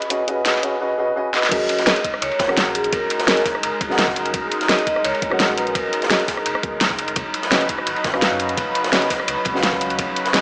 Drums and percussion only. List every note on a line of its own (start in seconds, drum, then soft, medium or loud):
0.02 closed hi-hat soft
0.10 kick loud
0.10 closed hi-hat loud
0.28 closed hi-hat medium
0.46 snare loud
0.46 closed hi-hat loud
0.55 snare soft
0.63 closed hi-hat medium
1.34 snare medium
1.43 snare medium
1.52 kick loud
1.52 closed hi-hat loud
1.52 crash loud
1.52 ride medium
1.69 closed hi-hat medium
1.69 ride medium
1.78 snare soft
1.78 closed hi-hat soft
1.86 snare loud
1.86 closed hi-hat loud
1.86 ride loud
1.96 closed hi-hat soft
1.96 ride soft
2.04 kick medium
2.04 closed hi-hat medium
2.04 ride medium
2.14 cross-stick soft
2.22 closed hi-hat medium
2.22 ride medium
2.31 ride soft
2.39 kick loud
2.39 snare loud
2.39 closed hi-hat medium
2.39 ride medium
2.49 cross-stick medium
2.49 ride soft
2.57 snare loud
2.57 closed hi-hat loud
2.57 ride medium
2.75 closed hi-hat medium
2.75 ride medium
2.84 closed hi-hat soft
2.92 kick loud
2.92 closed hi-hat medium
2.92 ride medium
3.10 closed hi-hat medium
3.10 ride medium
3.19 snare medium
3.19 closed hi-hat soft
3.27 snare loud
3.27 closed hi-hat loud
3.27 ride loud
3.37 snare soft
3.37 closed hi-hat soft
3.45 kick medium
3.45 snare soft
3.45 open hi-hat medium
3.45 ride medium
3.55 cross-stick soft
3.63 closed hi-hat loud
3.63 ride medium
3.81 kick loud
3.81 closed hi-hat medium
3.81 ride medium
3.91 snare soft
3.98 snare loud
3.98 closed hi-hat medium
3.98 ride medium
4.08 kick medium
4.08 snare medium
4.16 closed hi-hat medium
4.16 ride medium
4.25 closed hi-hat soft
4.25 ride soft
4.34 kick loud
4.34 closed hi-hat medium
4.34 ride medium
4.51 closed hi-hat medium
4.51 ride medium
4.61 snare soft
4.61 closed hi-hat soft
4.69 snare loud
4.69 closed hi-hat medium
4.69 ride medium
4.78 closed hi-hat soft
4.78 ride soft
4.87 kick medium
4.87 closed hi-hat medium
4.87 ride medium
4.96 cross-stick soft
5.05 closed hi-hat medium
5.05 ride loud
5.14 ride soft
5.22 kick loud
5.22 closed hi-hat medium
5.22 ride medium
5.31 cross-stick medium
5.40 snare loud
5.40 closed hi-hat medium
5.40 ride medium
5.58 closed hi-hat medium
5.58 ride medium
5.67 closed hi-hat soft
5.75 kick loud
5.75 closed hi-hat medium
5.75 ride medium
5.93 closed hi-hat medium
5.93 ride medium
6.02 snare medium
6.02 closed hi-hat soft
6.10 snare loud
6.10 closed hi-hat medium
6.10 ride loud
6.20 snare soft
6.20 closed hi-hat soft
6.28 kick medium
6.28 snare soft
6.28 open hi-hat medium
6.28 ride medium
6.37 cross-stick soft
6.46 closed hi-hat medium
6.46 ride medium
6.55 cross-stick medium
6.63 kick loud
6.63 closed hi-hat medium
6.81 snare loud
6.81 closed hi-hat medium
6.81 ride loud
6.90 kick medium
6.90 snare soft
6.99 closed hi-hat medium
6.99 ride medium
7.08 closed hi-hat soft
7.08 ride soft
7.16 kick loud
7.16 closed hi-hat medium
7.16 ride medium
7.34 closed hi-hat medium
7.34 ride medium
7.43 snare soft
7.43 closed hi-hat soft
7.52 snare loud
7.52 closed hi-hat medium
7.52 ride loud
7.61 closed hi-hat soft
7.61 ride soft
7.69 kick medium
7.69 closed hi-hat medium
7.69 ride medium
7.78 cross-stick soft
7.87 closed hi-hat medium
7.87 ride medium
7.96 ride soft
8.04 kick loud
8.04 snare loud
8.04 closed hi-hat medium
8.04 ride medium
8.14 cross-stick medium
8.14 ride soft
8.22 snare loud
8.22 closed hi-hat medium
8.22 ride medium
8.39 closed hi-hat medium
8.39 ride medium
8.49 closed hi-hat soft
8.57 kick loud
8.57 closed hi-hat medium
8.57 ride medium
8.75 closed hi-hat medium
8.75 ride medium
8.84 snare medium
8.84 closed hi-hat soft
8.93 snare loud
8.93 closed hi-hat loud
8.93 ride medium
9.02 snare soft
9.02 closed hi-hat soft
9.10 kick medium
9.10 snare soft
9.10 open hi-hat medium
9.10 ride medium
9.20 cross-stick soft
9.28 closed hi-hat medium
9.28 ride medium
9.45 kick loud
9.45 closed hi-hat medium
9.45 ride medium
9.56 snare medium
9.63 snare loud
9.63 closed hi-hat loud
9.63 ride medium
9.72 kick medium
9.72 snare medium
9.81 closed hi-hat medium
9.81 ride medium
9.90 closed hi-hat soft
9.90 ride soft
9.99 kick loud
9.99 closed hi-hat medium
9.99 ride medium
10.16 closed hi-hat medium
10.16 ride medium
10.25 snare soft
10.25 closed hi-hat soft
10.34 snare loud
10.34 closed hi-hat loud
10.34 ride loud